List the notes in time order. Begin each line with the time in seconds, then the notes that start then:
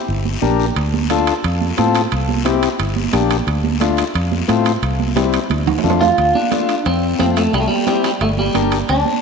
0.08 G1, high conga, long guiro
0.25 high conga
0.42 A#1 D4 G4 A#4, high conga, short guiro
0.60 short guiro
0.76 D2, high conga, high timbale, long guiro
0.94 high conga
1.10 D4 F4 A4, high conga, high timbale, short guiro
1.27 high timbale, short guiro
1.44 F2, high conga, high timbale, long guiro
1.61 high conga
1.77 A2 C4 F4 A4, high conga, high timbale, short guiro
1.95 high timbale, short guiro
2.12 C2, high conga, high timbale, long guiro
2.29 high conga
2.45 C4 E4 G4, high conga, high timbale, short guiro
2.63 high timbale, short guiro
2.79 G1, high conga, high timbale, long guiro
2.96 high conga
3.13 A#1 A#3 D4 G4, high conga, high timbale, short guiro
3.30 high timbale, short guiro
3.47 D2, high conga, high timbale, long guiro
3.64 high conga
3.80 A3 D4 F4, high conga, high timbale, short guiro
3.97 high timbale, short guiro
4.14 F2, high conga, high timbale, long guiro
4.32 high conga
4.48 A2 A3 C4 F4, high conga, high timbale, short guiro
4.65 high timbale, short guiro
4.82 C2, high conga, high timbale, long guiro
5.00 high conga
5.16 G3 C4 E4, high conga, high timbale, short guiro
5.33 high timbale, short guiro
5.50 D2, high conga, high timbale, long guiro
5.67 low conga, high timbale
5.78 low timbale
5.84 F2 A3 D4 F4, low conga, short guiro
5.90 low timbale
6.01 F4, low conga, low timbale, short guiro
6.18 D2, high conga, high timbale, long guiro
6.35 D4, high conga
6.51 A3 D4 F4, high conga, high timbale, short guiro
6.69 high timbale, short guiro
6.85 F2 C4, high conga, high timbale, long guiro
7.19 F2 A3 C4 F4, high conga, high timbale, short guiro
7.37 A3, high timbale, short guiro
7.53 C2 G3, high conga, high timbale, long guiro
7.60 A3
7.68 G3, high conga
7.87 G3 C4 E4 G4, high conga, high timbale, short guiro
8.04 G3, high timbale, short guiro
8.21 G1 A3, high conga, high timbale, long guiro
8.38 G3, high conga
8.54 G1 D4 G4 A#4, high conga, high timbale, short guiro
8.72 high timbale, short guiro
8.89 D2 D4, high conga, high timbale, long guiro
9.05 high conga